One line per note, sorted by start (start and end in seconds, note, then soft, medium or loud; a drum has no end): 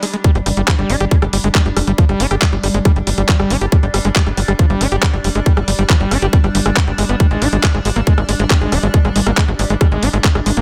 0.00 0.23 G3 medium
0.00 0.05 G#3 medium
0.00 0.23 D4 medium
0.00 cross-stick soft
0.00 open hi-hat loud
0.14 0.16 G#3 medium
0.14 closed hi-hat medium
0.24 0.31 G3 medium
0.24 10.62 G3 medium
0.24 10.62 D4 medium
0.24 kick loud
0.24 closed hi-hat medium
0.35 0.41 G1 medium
0.35 0.38 G3 medium
0.35 closed hi-hat soft
0.46 0.52 G1 loud
0.46 0.49 G3 loud
0.46 cross-stick soft
0.46 open hi-hat loud
0.57 0.63 G1 medium
0.57 0.61 G3 loud
0.57 closed hi-hat medium
0.68 0.74 F3 medium
0.68 kick loud
0.68 cross-stick medium
0.68 clap loud
0.68 closed hi-hat medium
0.79 0.85 G1 medium
0.79 0.91 G3 medium
0.79 closed hi-hat soft
0.90 0.96 G1 loud
0.90 0.96 D4 loud
0.90 open hi-hat loud
1.00 1.07 G1 medium
1.00 1.05 G4 medium
1.00 cross-stick soft
1.00 closed hi-hat medium
1.11 1.16 G3 medium
1.11 kick loud
1.11 closed hi-hat medium
1.22 1.28 G1 medium
1.22 1.25 G3 medium
1.22 cross-stick medium
1.22 closed hi-hat soft
1.33 1.39 G1 loud
1.33 1.37 G3 medium
1.33 open hi-hat loud
1.44 1.50 G1 medium
1.44 1.48 G#3 loud
1.44 closed hi-hat medium
1.55 1.61 G3 medium
1.55 kick loud
1.55 cross-stick soft
1.55 clap loud
1.55 closed hi-hat medium
1.66 1.72 G1 medium
1.66 1.68 G3 medium
1.66 closed hi-hat soft
1.77 1.83 F1 loud
1.77 1.79 G3 loud
1.77 cross-stick medium
1.77 open hi-hat loud
1.87 1.93 G1 medium
1.87 1.92 G3 loud
1.87 closed hi-hat medium
1.98 2.05 F3 medium
1.98 kick loud
1.98 closed hi-hat medium
2.09 2.15 G1 medium
2.09 2.22 G3 medium
2.09 cross-stick soft
2.09 closed hi-hat soft
2.20 2.26 G1 loud
2.20 2.27 D4 loud
2.20 open hi-hat loud
2.31 2.37 G1 medium
2.31 2.35 G4 medium
2.31 cross-stick medium
2.31 closed hi-hat medium
2.42 2.46 G3 medium
2.42 kick loud
2.42 clap loud
2.53 2.59 G1 medium
2.53 2.55 G3 medium
2.53 closed hi-hat soft
2.63 2.70 G1 loud
2.63 2.68 G3 medium
2.63 cross-stick soft
2.63 open hi-hat loud
2.74 2.80 G1 medium
2.74 2.79 G#3 loud
2.74 closed hi-hat medium
2.85 2.92 G3 medium
2.85 kick loud
2.85 cross-stick medium
2.85 closed hi-hat medium
2.96 3.02 G1 medium
2.96 2.99 G3 medium
2.96 closed hi-hat soft
3.07 3.13 G1 loud
3.07 3.10 G3 loud
3.07 open hi-hat loud
3.18 3.24 G1 loud
3.18 3.22 G3 loud
3.18 cross-stick soft
3.18 closed hi-hat medium
3.29 3.35 F3 medium
3.29 kick loud
3.29 clap loud
3.29 closed hi-hat medium
3.40 3.46 G1 medium
3.40 3.52 G3 medium
3.40 cross-stick medium
3.40 closed hi-hat soft
3.50 3.57 G1 loud
3.50 3.57 D4 loud
3.50 open hi-hat loud
3.61 3.67 G1 medium
3.61 3.66 G4 medium
3.61 closed hi-hat medium
3.72 3.77 G3 medium
3.72 kick loud
3.72 cross-stick soft
3.72 closed hi-hat medium
3.83 3.89 G1 medium
3.83 3.86 G3 medium
3.83 closed hi-hat soft
3.94 4.00 G1 loud
3.94 3.98 G3 medium
3.94 cross-stick medium
3.94 open hi-hat loud
4.05 4.11 G1 medium
4.05 4.09 G#3 loud
4.05 closed hi-hat medium
4.16 4.22 G3 medium
4.16 kick loud
4.16 clap loud
4.27 4.33 G1 medium
4.27 4.29 G3 medium
4.27 cross-stick soft
4.27 closed hi-hat soft
4.37 4.43 G1 loud
4.37 4.40 G3 loud
4.37 open hi-hat loud
4.48 4.54 G1 medium
4.48 4.53 G3 loud
4.48 cross-stick medium
4.48 closed hi-hat medium
4.59 4.66 F3 medium
4.59 kick loud
4.59 closed hi-hat medium
4.70 4.76 G1 medium
4.70 4.82 G3 medium
4.70 closed hi-hat soft
4.81 4.87 G1 loud
4.81 4.88 D4 loud
4.81 cross-stick soft
4.81 open hi-hat loud
4.92 4.98 G1 medium
4.92 4.96 G4 medium
4.92 closed hi-hat medium
5.03 5.07 G3 medium
5.03 kick loud
5.03 cross-stick medium
5.03 clap loud
5.03 closed hi-hat medium
5.13 5.20 G1 medium
5.13 5.16 G3 medium
5.13 closed hi-hat soft
5.24 5.30 F1 loud
5.24 5.29 G3 medium
5.24 open hi-hat loud
5.35 5.41 G1 medium
5.35 5.40 G#3 loud
5.35 cross-stick soft
5.35 closed hi-hat medium
5.46 5.53 G3 medium
5.46 kick loud
5.46 closed hi-hat medium
5.57 5.63 G1 medium
5.57 5.60 G3 medium
5.57 cross-stick medium
5.57 closed hi-hat soft
5.68 5.74 G1 loud
5.68 5.70 G3 loud
5.68 open hi-hat loud
5.79 5.85 G1 loud
5.79 5.83 G3 loud
5.79 closed hi-hat medium
5.90 5.96 F3 medium
5.90 kick loud
5.90 cross-stick soft
5.90 clap loud
5.90 closed hi-hat medium
6.00 6.06 G1 medium
6.00 6.13 G3 medium
6.00 closed hi-hat soft
6.11 6.17 G1 loud
6.11 6.18 D4 loud
6.11 cross-stick medium
6.11 open hi-hat loud
6.22 6.28 G1 medium
6.22 6.27 G4 medium
6.22 closed hi-hat medium
6.33 6.37 G3 medium
6.33 kick loud
6.33 closed hi-hat medium
6.44 6.50 G1 medium
6.44 6.47 G3 medium
6.44 cross-stick soft
6.44 closed hi-hat soft
6.55 6.61 G1 loud
6.55 6.57 G3 medium
6.55 open hi-hat loud
6.66 6.72 G1 medium
6.66 6.70 G#3 medium
6.66 cross-stick medium
6.66 closed hi-hat medium
6.77 6.79 B3 loud
6.77 kick loud
6.77 clap loud
6.77 closed hi-hat medium
6.87 6.93 G1 medium
6.87 6.92 G3 medium
6.87 closed hi-hat soft
6.98 7.04 G1 loud
6.98 7.05 G#3 medium
6.98 cross-stick soft
6.98 open hi-hat loud
7.09 7.15 G1 loud
7.09 7.16 B3 medium
7.09 closed hi-hat medium
7.20 7.27 G3 medium
7.20 kick loud
7.20 closed hi-hat medium
7.31 7.37 G#1 medium
7.31 7.43 G#3 medium
7.31 closed hi-hat soft
7.42 7.48 G#1 loud
7.42 7.48 D#4 loud
7.42 cross-stick soft
7.42 open hi-hat loud
7.53 7.59 G#1 medium
7.53 7.57 G#3 medium
7.53 closed hi-hat medium
7.63 7.68 G#3 medium
7.63 kick loud
7.63 cross-stick medium
7.63 clap loud
7.63 closed hi-hat medium
7.74 7.80 G#1 medium
7.74 7.79 G#3 medium
7.74 closed hi-hat soft
7.85 7.91 G#1 loud
7.85 7.90 G#3 medium
7.85 open hi-hat loud
7.96 8.02 G#1 medium
7.96 8.01 A#3 loud
7.96 cross-stick soft
7.96 closed hi-hat soft
8.07 8.14 G#3 medium
8.07 kick loud
8.07 closed hi-hat medium
8.18 8.24 G#1 medium
8.18 8.20 G#3 medium
8.18 cross-stick medium
8.18 closed hi-hat soft
8.29 8.35 G#1 medium
8.29 8.31 G#3 loud
8.29 open hi-hat loud
8.40 8.46 G#1 medium
8.40 8.44 G#3 loud
8.40 closed hi-hat medium
8.50 8.57 G3 medium
8.50 kick loud
8.50 cross-stick soft
8.50 clap loud
8.50 closed hi-hat medium
8.61 8.67 G#1 medium
8.61 8.74 G#3 medium
8.61 closed hi-hat soft
8.72 8.78 D#1 loud
8.72 8.79 D#4 loud
8.72 cross-stick medium
8.72 open hi-hat loud
8.83 8.89 G#1 medium
8.83 8.87 G#3 medium
8.83 closed hi-hat medium
8.94 8.98 G#3 medium
8.94 kick loud
8.94 closed hi-hat medium
9.05 9.11 G#1 medium
9.05 9.09 G#3 medium
9.05 cross-stick soft
9.05 closed hi-hat soft
9.16 9.22 G#1 medium
9.16 9.20 G#3 medium
9.16 open hi-hat loud
9.27 9.33 G#1 loud
9.27 9.31 A#3 loud
9.27 cross-stick medium
9.27 closed hi-hat medium
9.37 9.44 G#3 medium
9.37 kick loud
9.37 clap loud
9.37 closed hi-hat medium
9.48 9.54 G#1 medium
9.48 9.51 G#3 medium
9.48 closed hi-hat soft
9.59 9.65 G#1 loud
9.59 9.62 G#3 loud
9.59 cross-stick soft
9.59 open hi-hat loud
9.70 9.76 G#1 medium
9.70 9.74 G#3 loud
9.70 closed hi-hat medium
9.81 9.87 G3 medium
9.81 kick loud
9.81 cross-stick medium
9.81 closed hi-hat medium
9.92 9.98 G#1 medium
9.92 10.04 G#3 medium
9.92 closed hi-hat soft
10.03 10.09 G#1 loud
10.03 10.09 D#4 loud
10.03 open hi-hat loud
10.13 10.20 G#1 medium
10.13 10.18 G#3 medium
10.13 cross-stick soft
10.13 closed hi-hat medium
10.24 10.29 G#3 medium
10.24 kick loud
10.24 clap loud
10.24 closed hi-hat medium
10.35 10.41 G#1 medium
10.35 10.40 G#3 medium
10.35 cross-stick medium
10.35 closed hi-hat soft
10.46 10.52 G#1 loud
10.46 10.50 G#3 medium
10.46 open hi-hat loud
10.57 10.62 G#1 medium
10.57 10.61 A#3 loud
10.57 closed hi-hat medium